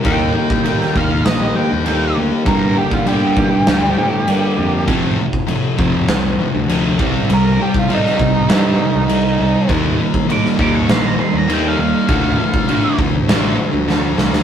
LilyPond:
<<
  \new Staff \with { instrumentName = "Lead electric guitar" } { \time 4/4 \key ees \lydian \tempo 4 = 100 g''4. f''8 ees''8 g''4 r8 | bes'8 g'16 f'16 g'2. | r1 | bes'8 g'16 f'16 ees'2. |
r4 d'''16 r16 d'''16 cis'''16 c'''16 bes''16 c'''16 bes''16 g''16 f''16 f''8~ | f''4. r2 r8 | }
  \new Staff \with { instrumentName = "Clean electric guitar" } { \time 4/4 \key ees \lydian <ees g bes ees' g'>8 <g bes ees' g'>16 <bes ees' g'>16 <ees g bes ees' g'>4~ <ees g bes ees' g'>16 <bes ees' g'>16 <g bes ees' g'>8 <ees g bes ees' g'>8 <g bes ees' g'>16 <bes ees' g'>16 | <g, d g bes d' g'>8 <g bes d' g'>16 <g bes d' g'>16 <g, d g bes d' g'>4~ <g, d g bes d' g'>16 <g d' g'>16 <g d' g'>8 <g, d g bes d' g'>8 <g bes d' g'>16 <g bes d' g'>16 | r1 | r1 |
r1 | r1 | }
  \new Staff \with { instrumentName = "Distorted electric guitar" } { \clef bass \time 4/4 \key ees \lydian <ees bes ees'>8 <ees bes>8 <ees bes>8 <ees bes ees'>8 <ees bes>8 <ees bes>8 <ees bes ees'>8 <ees bes>8 | <g, d g>8 <g, d>8 <g, d g>8 <g, d>8 <g, d g>8 <g, d>8 <g, d>8 <g, d>8 | <f, c f>8 <f, c>8 <f, c>8 <f, c f>8 <f, c>8 <f, c>8 <f, c f>8 <c g c'>8 | <c g>8 <c g>8 <c g c'>8 <c g>8 <c g c'>8 <c g>8 <c g>8 <c g>8 |
<ees bes ees'>8 <ees bes>8 <ees bes>8 <ees bes ees'>8 <ees bes>8 <ees bes>8 <ees bes ees'>8 <ees bes>8 | <d a d'>8 <d a>8 <d a d'>8 <d a>8 <d a d'>8 <d a>8 <d a>8 <d a>8 | }
  \new Staff \with { instrumentName = "Overdriven electric guitar" } { \clef bass \time 4/4 \key ees \lydian r1 | r1 | <f, c f>8 <f, c>8 <f, c>8 <f, c f>8 <f, c>8 <f, c>8 <f, c f>8 <c g c'>8 | <c g>8 <c g>8 <c g c'>8 <c g>8 <c g c'>8 <c g>8 <c g>8 <c g>8 |
<ees g bes>8 <ees g>8 <ees g>8 <ees g bes>8 <ees g>8 <ees g>8 <ees g bes>8 <ees g>8 | <d f a>8 <d f>8 <d f a>8 <d f>8 <d f a>8 <d f>8 <d f>8 <d f>8 | }
  \new Staff \with { instrumentName = "Picked electric bass" } { \clef bass \time 4/4 \key ees \lydian ees,8 r4 ees,8 bes,,8 r16 ees,8. d,16 r16 | g,8 r4 g,8 d,8 a,8 g,8 f,8 | f,8 r4 f,8 c,8 r16 d,8. c,16 r16 | c,8 r4 c,8 g,8 r16 c,8. c,16 r16 |
ees,8 r4 ees,8 bes,,8 r16 ees,8. ees,16 r16 | d,8 r4 d,8 a,,8 r16 d,8. c,16 d,16 | }
  \new DrumStaff \with { instrumentName = "Drums" } \drummode { \time 4/4 <cymc bd>8. bd16 cymc16 sn16 bd8 <cymc sn>4 cymc4 | <cymc bd>8. bd16 cymc8 bd8 <cymc sn>4 cymc4 | <cymc bd>8. bd16 cymc8 bd8 <cymc sn>4 cymc8 bd8 | cymc8. bd16 cymc16 sn16 bd8 <cymc sn>4 cymc4 |
<cymc bd>8. bd16 cymc16 sn16 bd8 <cymc sn>4 cymc4 | <cymc bd>8. bd16 cymc8 bd8 <cymc sn>4 sn8 sn16 sn16 | }
>>